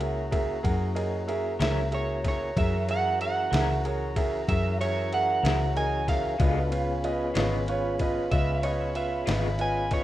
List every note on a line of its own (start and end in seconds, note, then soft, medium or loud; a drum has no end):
0.00 0.60 C#2 loud
0.00 2.52 A#3 medium
0.00 2.52 C#4 medium
0.00 2.52 E4 medium
0.00 2.52 F#4 medium
0.00 6.36 F#4 medium
0.00 0.23 G#4 medium
0.00 0.23 A#4 medium
0.00 6.36 C#5 medium
0.00 0.24 E5 medium
0.00 6.36 A#5 medium
0.00 ride medium
0.31 0.56 G#4 medium
0.31 0.56 A#4 medium
0.31 0.56 E5 medium
0.31 kick medium
0.31 ride medium
0.63 1.56 F#2 medium
0.63 0.87 G#4 medium
0.63 0.88 A#4 medium
0.63 0.88 F#5 medium
0.63 kick loud
0.63 ride medium
0.95 1.19 G#4 medium
0.95 1.19 A#4 medium
0.95 1.20 D#5 medium
0.95 ride medium
1.28 1.52 G#4 medium
1.28 1.52 A#4 medium
1.28 1.52 E5 medium
1.28 ride medium
1.59 2.52 C#2 medium
1.59 1.80 F#3 medium
1.59 1.79 C#4 medium
1.59 1.79 E4 medium
1.59 1.84 G#4 medium
1.59 1.79 A#4 medium
1.59 1.84 A#4 medium
1.59 1.84 E5 medium
1.59 1.92 E5 medium
1.59 snare loud
1.59 ride medium
1.91 2.16 G#4 medium
1.91 2.16 A#4 soft
1.91 2.24 C#5 medium
1.91 2.16 E5 medium
1.91 ride medium
2.24 2.48 G#4 medium
2.24 2.48 A#4 soft
2.24 2.48 E5 medium
2.24 kick medium
2.24 snare soft
2.24 ride medium
2.28 2.57 C#5 medium
2.56 3.48 F#2 loud
2.56 6.36 E3 medium
2.56 6.36 C#4 medium
2.56 6.36 F#4 medium
2.56 2.80 G#4 medium
2.56 6.36 A#4 medium
2.56 2.81 A#4 medium
2.56 2.81 E5 medium
2.56 2.88 E5 loud
2.56 kick loud
2.56 ride medium
2.89 3.12 G#4 medium
2.89 3.13 A#4 medium
2.89 3.13 E5 medium
2.89 3.20 F#5 loud
2.89 ride medium
3.21 3.44 G#4 medium
3.21 3.44 A#4 medium
3.21 3.45 E5 medium
3.21 3.83 F#5 loud
3.21 ride medium
3.51 4.44 C#2 medium
3.51 3.71 F#3 medium
3.51 3.71 C#4 medium
3.51 3.71 E4 medium
3.51 3.76 G#4 medium
3.51 3.71 A#4 medium
3.51 3.76 A#4 medium
3.51 3.76 E5 medium
3.51 snare loud
3.51 ride medium
3.85 4.08 G#4 medium
3.85 4.09 A#4 medium
3.85 4.09 C#5 medium
3.85 ride medium
4.16 4.40 G#4 medium
4.16 4.40 A#4 medium
4.16 4.40 E5 medium
4.16 kick medium
4.16 ride medium
4.48 5.40 F#2 medium
4.48 4.72 G#4 medium
4.48 4.72 A#4 medium
4.48 4.79 E5 loud
4.48 4.72 E5 medium
4.48 kick loud
4.48 ride medium
4.80 5.04 G#4 medium
4.80 5.04 A#4 medium
4.80 5.11 C#5 loud
4.80 5.04 E5 medium
4.80 ride medium
5.12 5.36 G#4 medium
5.12 5.36 A#4 soft
5.12 5.36 E5 medium
5.12 5.75 F#5 medium
5.12 ride medium
5.43 6.36 C#2 loud
5.43 5.63 F#3 medium
5.43 5.63 C#4 medium
5.43 5.63 E4 medium
5.43 5.68 G#4 medium
5.43 5.62 A#4 medium
5.43 5.68 A#4 medium
5.43 5.68 E5 medium
5.43 snare loud
5.43 ride medium
5.76 6.00 G#4 medium
5.76 6.00 A#4 medium
5.76 6.00 D#5 medium
5.76 6.08 G#5 medium
5.76 ride medium
6.08 6.32 G#4 medium
6.08 6.32 A#4 medium
6.08 6.32 E5 medium
6.08 7.33 F5 loud
6.08 kick medium
6.08 snare soft
6.08 ride medium
6.39 7.32 C#2 loud
6.39 6.58 C#3 medium
6.39 6.59 G#3 medium
6.39 6.59 B3 medium
6.39 6.70 B3 medium
6.39 6.72 D4 medium
6.39 6.59 F4 medium
6.39 6.64 F4 medium
6.39 10.04 F4 medium
6.39 6.72 F#4 medium
6.39 6.72 A4 medium
6.39 6.64 B4 medium
6.39 10.04 C#5 medium
6.39 6.64 D#5 medium
6.39 10.04 B5 medium
6.39 kick loud
6.39 ride medium
6.71 10.04 B3 medium
6.71 10.04 C#4 medium
6.71 10.04 F4 medium
6.71 6.96 F4 medium
6.71 10.04 G#4 medium
6.71 6.96 B4 medium
6.71 6.96 F5 medium
6.71 ride medium
7.04 7.28 F4 medium
7.04 7.28 B4 medium
7.04 7.28 D#5 medium
7.04 ride medium
7.34 8.28 G#1 loud
7.34 7.55 C#3 medium
7.34 7.55 G#3 medium
7.34 7.54 B3 medium
7.34 7.54 F4 medium
7.34 7.60 F4 medium
7.34 7.60 B4 medium
7.34 7.60 D#5 medium
7.34 snare loud
7.34 ride medium
7.68 7.92 F4 medium
7.68 7.92 B4 medium
7.68 7.92 C#5 medium
7.68 ride medium
7.99 8.24 F4 medium
7.99 8.25 B4 medium
7.99 8.25 D#5 medium
7.99 kick medium
7.99 ride medium
8.31 9.24 C#2 medium
8.31 8.56 F4 medium
8.31 8.56 B4 medium
8.31 8.56 D#5 medium
8.31 8.63 E5 loud
8.31 kick medium
8.31 ride medium
8.63 8.88 F4 medium
8.63 8.88 B4 medium
8.63 8.95 C#5 medium
8.63 8.88 D#5 medium
8.63 ride medium
8.95 9.20 F4 medium
8.95 9.20 B4 medium
8.95 9.58 E5 medium
8.95 9.20 F5 medium
8.95 ride medium
9.26 10.04 G#1 loud
9.26 9.47 C#3 medium
9.26 9.47 G#3 medium
9.26 9.46 B3 medium
9.26 9.46 F4 medium
9.26 9.52 F4 soft
9.26 9.51 B4 soft
9.26 9.52 D#5 medium
9.26 snare loud
9.26 ride medium
9.59 9.84 F4 medium
9.59 9.84 B4 medium
9.59 9.84 D#5 medium
9.59 9.92 G#5 medium
9.59 ride medium
9.91 10.04 F4 medium
9.91 10.04 B4 medium
9.91 10.04 C#5 loud
9.91 10.04 D#5 medium
9.91 kick medium
9.91 snare soft
9.91 ride medium